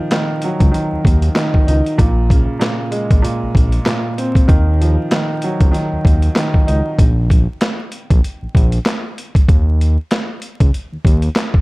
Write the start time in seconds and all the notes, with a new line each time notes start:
Already playing: D#3 F3
0.11 D#3, snare, clap, closed hi-hat
0.42 F#3, closed hi-hat
0.60 C#2, kick, closed hi-hat
0.72 D#3, closed hi-hat
0.92 D#2
1.05 D#2, kick, closed hi-hat
1.22 closed hi-hat
1.35 D#3, snare, clap, closed hi-hat
1.54 kick
1.67 C#2 D#4, closed hi-hat
1.86 closed hi-hat
1.98 A#1 A#2, kick, closed hi-hat
2.30 C#3, kick, closed hi-hat
2.59 A#2, snare, clap, closed hi-hat
2.91 G#3, closed hi-hat
3.11 A#1, kick, closed hi-hat
3.22 A#2, closed hi-hat
3.42 A#1
3.55 A#1, kick, closed hi-hat
3.72 closed hi-hat
3.86 A#2, snare, clap, closed hi-hat
4.18 C4, closed hi-hat
4.35 kick, closed hi-hat
4.48 D#2 D#3, kick, closed hi-hat
4.81 F3, closed hi-hat
5.11 D#3, snare, clap, closed hi-hat
5.42 F#3, closed hi-hat
5.61 C#2, kick, closed hi-hat
5.71 D#3, snare, closed hi-hat
5.93 D#2
6.05 D#2, kick, closed hi-hat
6.22 closed hi-hat
6.35 D#3, snare, clap, closed hi-hat
6.54 kick
6.67 C#2 D#4, closed hi-hat
6.99 A#1, kick, closed hi-hat
7.30 kick, closed hi-hat
7.61 snare, clap, closed hi-hat
7.92 closed hi-hat
8.10 A#1, kick, closed hi-hat
8.24 closed hi-hat
8.42 A#1
8.55 A#1, kick, closed hi-hat
8.72 closed hi-hat
8.86 snare, clap, closed hi-hat
9.18 closed hi-hat
9.35 kick, closed hi-hat
9.49 D#2, kick, closed hi-hat
9.81 closed hi-hat
10.11 snare, clap, closed hi-hat
10.42 closed hi-hat
10.60 C#2, kick, closed hi-hat
10.74 closed hi-hat
10.92 D#2
11.05 D#2, kick, closed hi-hat
11.22 closed hi-hat
11.36 snare, clap, closed hi-hat
11.54 kick